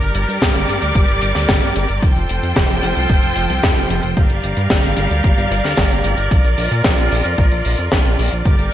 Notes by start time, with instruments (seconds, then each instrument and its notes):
Already playing: string section G3 G4 A#4 D5 D6
0.02 analog synth bass G1, closed hi-hat
0.15 analog synth bass G1, closed hi-hat
0.28 analog synth bass G2, closed hi-hat
0.42 analog synth bass G1, kick, snare, closed hi-hat
0.55 analog synth bass G1, closed hi-hat
0.69 analog synth bass G1, closed hi-hat
0.82 analog synth bass D2, closed hi-hat
0.95 analog synth bass G1, kick, closed hi-hat
1.08 analog synth bass G1, closed hi-hat
1.22 analog synth bass G1, closed hi-hat
1.35 analog synth bass D2, snare, closed hi-hat
1.49 analog synth bass G1, kick, snare, closed hi-hat
1.63 analog synth bass G1, closed hi-hat
1.76 analog synth bass G1, closed hi-hat
1.89 analog synth bass G1, closed hi-hat
2.02 analog synth bass F1, string section F3 F4 A4 C5 G5, kick, closed hi-hat
2.16 analog synth bass F1, closed hi-hat
2.29 analog synth bass F1, closed hi-hat
2.43 analog synth bass F2, closed hi-hat
2.56 analog synth bass F1, kick, snare, closed hi-hat
2.70 analog synth bass F1, closed hi-hat
2.83 analog synth bass F1, closed hi-hat
2.96 analog synth bass C2, closed hi-hat
3.09 analog synth bass F1, kick, closed hi-hat
3.23 analog synth bass F1, closed hi-hat
3.36 analog synth bass F1, closed hi-hat
3.50 analog synth bass C2, closed hi-hat
3.63 analog synth bass F1, kick, snare, closed hi-hat
3.76 analog synth bass F1, closed hi-hat
3.90 analog synth bass F1, closed hi-hat
4.03 analog synth bass F1, closed hi-hat
4.17 analog synth bass G1, string section G3 G4 A#4 D5 F5, kick, closed hi-hat
4.30 analog synth bass G1, closed hi-hat
4.44 analog synth bass G1, closed hi-hat
4.57 analog synth bass G2, closed hi-hat
4.70 analog synth bass G1, kick, snare, closed hi-hat
4.84 analog synth bass G1, closed hi-hat
4.97 analog synth bass G1, closed hi-hat
5.10 analog synth bass D2, closed hi-hat
5.24 analog synth bass G1, kick, closed hi-hat
5.37 analog synth bass G1, closed hi-hat
5.51 analog synth bass G1, closed hi-hat
5.64 analog synth bass D2, snare, closed hi-hat
5.77 analog synth bass G1, kick, snare, closed hi-hat
5.91 analog synth bass G1, closed hi-hat
6.04 analog synth bass G1, closed hi-hat
6.17 analog synth bass G1, closed hi-hat
6.31 analog synth bass A#1, string section F4, kick, closed hi-hat
6.44 analog synth bass A#1, closed hi-hat
6.58 analog synth bass A#1, open hi-hat
6.71 analog synth bass A#2, closed hi-hat
6.84 analog synth bass A#1, kick, snare, closed hi-hat
6.98 analog synth bass A#1, closed hi-hat
7.12 analog synth bass A#1, open hi-hat
7.25 analog synth bass F2, closed hi-hat
7.38 analog synth bass A#1, kick, closed hi-hat
7.51 analog synth bass A#1, closed hi-hat
7.65 analog synth bass A#1, open hi-hat
7.78 analog synth bass F2, closed hi-hat
7.92 analog synth bass A#1, kick, snare, closed hi-hat
8.05 analog synth bass A#1, closed hi-hat
8.19 analog synth bass A#1, open hi-hat
8.32 analog synth bass A#1, closed hi-hat
8.45 analog synth bass G1, string section G3 G4 A#4 D5 D6, kick, closed hi-hat
8.59 analog synth bass G1, closed hi-hat